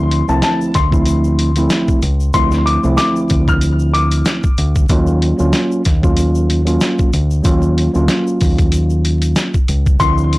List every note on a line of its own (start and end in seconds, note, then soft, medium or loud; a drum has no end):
0.00 0.21 D2 loud
0.00 0.23 D2 medium
0.00 0.24 F3 medium
0.00 0.24 A3 medium
0.00 0.24 C4 medium
0.00 0.25 E4 loud
0.00 0.26 C6 loud
0.11 closed hi-hat medium
0.27 0.41 C2 medium
0.27 0.71 D2 medium
0.27 0.71 F3 medium
0.27 0.71 A3 medium
0.27 0.71 C4 medium
0.27 0.72 E4 loud
0.27 0.41 A5 medium
0.27 shaker soft
0.42 0.72 A5 medium
0.42 snare loud
0.42 closed hi-hat loud
0.42 shaker medium
0.61 shaker soft
0.74 1.67 D2 medium
0.74 2.30 C6 medium
0.74 kick medium
0.74 snare soft
0.74 closed hi-hat medium
0.74 shaker soft
0.90 1.49 D2 loud
0.90 1.50 F3 medium
0.90 1.50 A3 medium
0.90 1.50 C4 medium
0.90 1.51 E4 loud
0.90 kick medium
0.90 shaker soft
1.05 closed hi-hat medium
1.05 shaker medium
1.24 shaker medium
1.39 closed hi-hat medium
1.56 1.99 D2 medium
1.56 1.99 F3 medium
1.56 1.99 A3 medium
1.56 1.99 C4 medium
1.56 2.00 E4 loud
1.56 closed hi-hat medium
1.56 shaker medium
1.70 snare loud
1.70 closed hi-hat medium
1.70 shaker medium
1.88 kick medium
1.88 shaker soft
2.02 2.30 C#2 medium
2.02 closed hi-hat medium
2.02 shaker medium
2.20 shaker medium
2.33 2.79 D2 medium
2.33 2.77 D2 loud
2.33 2.79 F3 medium
2.33 2.80 A3 medium
2.33 2.80 C4 medium
2.33 2.80 E4 loud
2.33 2.63 C6 loud
2.33 kick loud
2.33 closed hi-hat loud
2.33 shaker medium
2.51 snare soft
2.51 shaker medium
2.66 2.94 D6 medium
2.66 closed hi-hat medium
2.83 2.96 C2 medium
2.83 4.44 D2 loud
2.83 4.45 F3 medium
2.83 4.45 A3 medium
2.83 4.45 C4 medium
2.83 4.46 E4 loud
2.83 shaker soft
2.97 3.44 D6 medium
2.97 snare loud
2.97 closed hi-hat medium
2.97 shaker medium
3.16 shaker soft
3.29 4.22 D2 medium
3.29 kick loud
3.29 closed hi-hat medium
3.29 shaker soft
3.48 3.91 F6 medium
3.48 kick medium
3.48 shaker soft
3.61 closed hi-hat medium
3.61 shaker medium
3.79 shaker soft
3.93 4.85 D6 medium
3.93 closed hi-hat medium
4.11 closed hi-hat medium
4.11 shaker medium
4.25 snare loud
4.25 closed hi-hat medium
4.25 shaker medium
4.43 kick medium
4.43 shaker soft
4.57 4.85 D2 medium
4.57 closed hi-hat medium
4.57 shaker soft
4.75 kick medium
4.75 shaker medium
4.89 5.32 D#2 loud
4.89 5.35 F#3 medium
4.89 5.35 A#3 medium
4.89 5.36 C#4 medium
4.89 5.36 F4 loud
4.89 kick loud
4.89 closed hi-hat loud
4.89 shaker medium
5.07 shaker medium
5.22 closed hi-hat medium
5.38 5.52 D2 medium
5.38 5.81 F#3 loud
5.38 5.81 A#3 medium
5.38 5.82 C#4 medium
5.38 5.82 F4 loud
5.38 shaker soft
5.53 snare loud
5.53 closed hi-hat medium
5.53 shaker medium
5.72 shaker soft
5.85 6.77 D#2 medium
5.85 kick medium
5.85 snare soft
5.85 closed hi-hat medium
5.85 shaker soft
6.02 6.61 F#3 medium
6.02 6.61 A#3 medium
6.02 6.61 C#4 medium
6.02 6.62 F4 loud
6.02 kick medium
6.02 shaker soft
6.17 closed hi-hat medium
6.17 shaker medium
6.35 shaker soft
6.50 closed hi-hat medium
6.65 7.08 F#3 loud
6.65 7.09 A#3 medium
6.65 7.09 C#4 medium
6.65 7.10 F4 loud
6.65 closed hi-hat medium
6.65 shaker medium
6.81 snare loud
6.81 closed hi-hat medium
6.81 shaker medium
6.99 kick medium
6.99 shaker soft
7.13 7.40 D2 medium
7.13 closed hi-hat medium
7.13 shaker medium
7.31 shaker medium
7.43 7.87 D#2 loud
7.43 7.89 F#3 medium
7.43 7.90 A#3 medium
7.43 7.90 C#4 medium
7.43 7.90 F4 loud
7.43 kick loud
7.43 closed hi-hat loud
7.43 shaker medium
7.62 shaker medium
7.78 closed hi-hat medium
7.93 8.07 D2 medium
7.93 9.55 F#3 medium
7.93 9.55 A#3 medium
7.93 9.56 C#4 medium
7.93 9.56 F4 loud
7.93 shaker soft
8.08 snare loud
8.08 closed hi-hat medium
8.08 shaker medium
8.27 shaker soft
8.41 9.33 D#2 medium
8.41 kick loud
8.41 open hi-hat medium
8.41 shaker soft
8.58 kick medium
8.58 closed hi-hat medium
8.58 shaker soft
8.72 closed hi-hat medium
8.72 shaker medium
8.90 shaker medium
9.05 closed hi-hat medium
9.22 closed hi-hat medium
9.22 shaker medium
9.36 snare loud
9.36 closed hi-hat medium
9.36 shaker medium
9.54 kick medium
9.54 shaker soft
9.68 9.96 C#2 medium
9.68 closed hi-hat medium
9.68 shaker medium
9.86 kick medium
9.86 shaker medium
9.99 10.38 D2 medium
9.99 10.38 D2 loud
9.99 10.38 F3 medium
9.99 10.38 A3 medium
9.99 10.38 C4 medium
9.99 10.38 E4 loud
9.99 10.38 C6 loud
9.99 kick loud
9.99 closed hi-hat loud
9.99 shaker medium
10.18 shaker medium
10.33 closed hi-hat medium